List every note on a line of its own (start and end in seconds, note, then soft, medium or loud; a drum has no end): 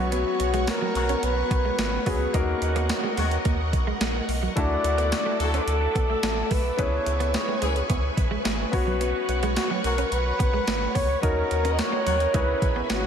0.00 0.24 B1 loud
0.00 2.02 F#3 medium
0.00 2.02 B3 medium
0.00 2.31 B3 medium
0.00 2.03 C#4 medium
0.00 0.11 F#4 medium
0.00 2.03 F#4 medium
0.00 2.03 C#5 medium
0.00 2.32 C#5 medium
0.00 6.74 F#5 medium
0.00 4.52 C#6 medium
0.12 0.21 B3 medium
0.12 0.70 F#4 loud
0.12 closed hi-hat medium
0.40 0.70 B1 medium
0.40 muted clean electric guitar stroke soft
0.40 closed hi-hat medium
0.54 0.63 G#3 medium
0.54 closed hi-hat medium
0.67 0.80 C#3 medium
0.67 0.80 B3 medium
0.67 0.79 F#4 medium
0.67 1.26 A#4 loud
0.67 snare loud
0.67 closed hi-hat medium
0.67 tambourine medium
0.82 0.91 F#3 medium
0.95 1.15 B1 loud
0.95 1.13 C#3 medium
0.95 1.13 B3 medium
0.95 1.13 F#4 loud
0.95 muted clean electric guitar stroke soft
0.95 closed hi-hat medium
1.09 1.18 C#4 medium
1.09 closed hi-hat medium
1.23 1.43 B1 loud
1.23 2.09 B4 loud
1.23 muted clean electric guitar stroke soft
1.23 closed hi-hat medium
1.51 1.71 B1 medium
1.51 1.60 B3 medium
1.51 kick loud
1.51 closed hi-hat medium
1.65 1.74 G#3 medium
1.78 1.98 G#1 loud
1.78 snare loud
1.78 closed hi-hat loud
1.78 tambourine medium
2.06 2.27 C#2 medium
2.06 2.34 F#3 medium
2.06 2.34 B3 soft
2.06 2.16 B3 medium
2.06 2.32 C#4 soft
2.06 2.33 F#4 soft
2.06 2.35 G#4 loud
2.06 2.34 B4 medium
2.06 kick loud
2.06 open hi-hat medium
2.33 2.54 D#2 loud
2.33 4.52 A#3 medium
2.33 4.52 C#4 medium
2.33 4.52 D#4 medium
2.33 2.44 D#4 medium
2.33 4.53 F#4 medium
2.33 3.15 F#4 medium
2.33 4.54 A#4 medium
2.33 4.53 A#4 medium
2.33 4.54 D#5 medium
2.33 kick loud
2.33 closed hi-hat medium
2.62 2.92 D#2 loud
2.62 muted clean electric guitar stroke soft
2.62 closed hi-hat medium
2.76 2.85 A#3 medium
2.76 closed hi-hat medium
2.89 3.02 D#3 medium
2.89 3.02 C#4 medium
2.89 3.02 F#4 medium
2.89 muted clean electric guitar stroke soft
2.89 snare loud
2.89 closed hi-hat medium
2.89 tambourine medium
3.04 3.13 G#3 medium
3.17 3.38 D#2 loud
3.17 3.35 D#3 medium
3.17 3.27 G#3 medium
3.17 3.35 C#4 loud
3.17 3.35 F#4 loud
3.17 closed hi-hat medium
3.31 closed hi-hat medium
3.45 3.75 D#2 loud
3.45 3.54 A#3 medium
3.45 kick loud
3.45 closed hi-hat medium
3.73 3.93 B1 loud
3.73 muted clean electric guitar stroke soft
3.73 kick medium
3.73 closed hi-hat medium
3.87 3.96 G#3 medium
4.01 4.21 A#1 medium
4.01 4.10 G#3 medium
4.01 snare loud
4.01 closed hi-hat loud
4.01 tambourine medium
4.15 muted clean electric guitar stroke soft
4.28 4.48 B1 medium
4.28 open hi-hat medium
4.43 4.52 F#3 medium
4.56 4.77 D2 loud
4.56 6.74 A3 medium
4.56 6.75 D4 medium
4.56 4.66 D4 medium
4.56 6.75 E4 medium
4.56 6.75 F#4 medium
4.56 6.77 A4 medium
4.56 6.75 A4 medium
4.56 5.36 D5 loud
4.56 8.69 E5 medium
4.56 6.77 D6 medium
4.56 kick loud
4.56 closed hi-hat medium
4.84 5.14 D2 loud
4.84 muted clean electric guitar stroke soft
4.84 closed hi-hat medium
4.98 5.07 B3 medium
4.98 closed hi-hat medium
5.12 5.24 D3 medium
5.12 5.24 A3 medium
5.12 5.24 F#4 medium
5.12 snare loud
5.12 closed hi-hat medium
5.12 tambourine medium
5.26 5.35 A3 medium
5.40 5.60 D2 loud
5.40 5.64 F#3 medium
5.40 5.64 E4 medium
5.40 5.64 A4 loud
5.40 6.53 A4 loud
5.40 muted clean electric guitar stroke soft
5.40 closed hi-hat medium
5.54 5.63 C#4 medium
5.54 closed hi-hat medium
5.67 5.87 D2 loud
5.67 muted clean electric guitar stroke soft
5.67 closed hi-hat medium
5.95 6.15 B1 medium
5.95 6.05 B3 medium
5.95 kick loud
5.95 closed hi-hat medium
6.10 6.19 A3 medium
6.23 6.43 A1 medium
6.23 snare loud
6.23 closed hi-hat loud
6.23 tambourine medium
6.51 6.71 B1 loud
6.51 6.60 A3 medium
6.51 6.82 B4 medium
6.51 kick medium
6.51 open hi-hat medium
6.77 6.99 C#2 loud
6.77 8.69 B3 medium
6.77 8.69 C#4 medium
6.77 6.88 C#4 medium
6.77 8.69 E4 medium
6.77 8.69 G#4 medium
6.77 11.19 B4 medium
6.77 8.70 B4 medium
6.77 7.35 C#5 loud
6.77 8.71 G#5 medium
6.77 13.07 C#6 medium
6.77 kick loud
6.77 closed hi-hat medium
7.06 7.36 C#2 loud
7.06 muted clean electric guitar stroke soft
7.06 closed hi-hat medium
7.20 7.29 B3 medium
7.20 closed hi-hat medium
7.34 7.46 E3 medium
7.34 7.46 C#4 medium
7.34 7.46 G#4 medium
7.34 7.87 C#5 medium
7.34 muted clean electric guitar stroke soft
7.34 snare loud
7.34 closed hi-hat medium
7.34 tambourine medium
7.48 7.57 G#3 medium
7.62 7.82 C#2 medium
7.62 7.80 E3 medium
7.62 7.71 G#3 medium
7.62 7.80 C#4 medium
7.62 7.80 G#4 loud
7.62 closed hi-hat medium
7.76 closed hi-hat medium
7.90 8.10 C#2 loud
7.90 7.99 B3 medium
7.90 kick loud
7.90 closed hi-hat medium
8.17 8.37 A#1 medium
8.17 muted clean electric guitar stroke soft
8.17 kick medium
8.17 closed hi-hat medium
8.31 8.40 G#3 medium
8.45 8.65 G#1 medium
8.45 8.54 G#3 medium
8.45 snare loud
8.45 closed hi-hat loud
8.45 tambourine medium
8.59 muted clean electric guitar stroke soft
8.72 9.13 B1 loud
8.72 10.91 B3 medium
8.72 10.91 C#4 medium
8.72 10.91 F#4 medium
8.72 9.53 F#4 medium
8.72 10.91 B4 medium
8.72 11.21 C#5 medium
8.72 10.92 C#5 medium
8.72 11.21 F#5 medium
8.72 kick loud
8.72 open hi-hat medium
8.87 8.96 F#3 medium
9.01 9.10 B3 medium
9.01 closed hi-hat medium
9.28 9.59 B1 medium
9.28 muted clean electric guitar stroke soft
9.28 closed hi-hat medium
9.43 9.52 G#3 medium
9.43 closed hi-hat medium
9.56 9.68 C#3 medium
9.56 9.68 B3 medium
9.56 9.68 F#4 loud
9.56 9.69 F#4 medium
9.56 snare loud
9.56 closed hi-hat medium
9.56 tambourine medium
9.70 9.79 F#3 medium
9.84 10.04 B1 loud
9.84 10.02 C#3 medium
9.84 10.02 B3 medium
9.84 10.02 F#4 loud
9.84 10.13 A#4 medium
9.84 muted clean electric guitar stroke soft
9.84 closed hi-hat medium
9.98 10.07 C#4 medium
9.98 closed hi-hat medium
10.12 10.32 B1 loud
10.12 10.96 B4 loud
10.12 muted clean electric guitar stroke soft
10.12 closed hi-hat medium
10.39 10.60 B1 medium
10.39 10.49 B3 medium
10.39 kick loud
10.39 closed hi-hat medium
10.54 10.63 G#3 medium
10.67 10.88 G#1 loud
10.67 snare loud
10.67 closed hi-hat loud
10.67 tambourine medium
10.95 11.15 C#2 loud
10.95 11.04 B3 medium
10.95 11.22 C#5 loud
10.95 kick loud
10.95 open hi-hat medium
11.22 11.43 D#2 loud
11.22 12.31 C#4 medium
11.22 12.32 D#4 medium
11.22 11.32 D#4 medium
11.22 12.32 F#4 medium
11.22 11.74 A#4 loud
11.22 12.32 A#4 medium
11.22 12.33 A#4 medium
11.22 12.33 C#5 medium
11.22 12.34 D#5 medium
11.22 12.34 F#5 medium
11.22 kick loud
11.22 closed hi-hat medium
11.51 11.81 D#2 medium
11.51 muted clean electric guitar stroke soft
11.51 closed hi-hat medium
11.65 11.74 C#4 medium
11.65 closed hi-hat medium
11.73 11.80 D#5 medium
11.78 11.91 D#3 medium
11.78 11.91 C#4 medium
11.78 11.91 F#4 medium
11.78 12.36 C#5 loud
11.78 muted clean electric guitar stroke soft
11.78 snare loud
11.78 closed hi-hat medium
11.78 tambourine medium
11.92 12.02 A#3 medium
12.06 12.27 D#2 loud
12.06 12.24 D#3 medium
12.06 12.16 F#3 medium
12.06 12.24 C#4 medium
12.06 12.24 F#4 loud
12.06 closed hi-hat medium
12.20 closed hi-hat medium
12.33 12.54 C#2 loud
12.33 12.43 G#3 medium
12.33 13.07 C#4 medium
12.33 13.07 E4 medium
12.33 13.07 G#4 medium
12.33 13.07 B4 medium
12.33 12.90 B4 medium
12.33 13.07 B4 medium
12.33 13.07 C#5 medium
12.33 13.07 E5 medium
12.33 13.07 G#5 medium
12.33 kick loud
12.33 closed hi-hat medium
12.62 12.82 A#1 medium
12.62 muted clean electric guitar stroke soft
12.62 kick medium
12.62 closed hi-hat medium
12.76 12.85 B3 medium
12.90 13.07 G#1 loud
12.90 12.99 B3 medium
12.90 13.07 F#4 medium
12.90 snare loud
12.90 closed hi-hat loud
12.90 tambourine medium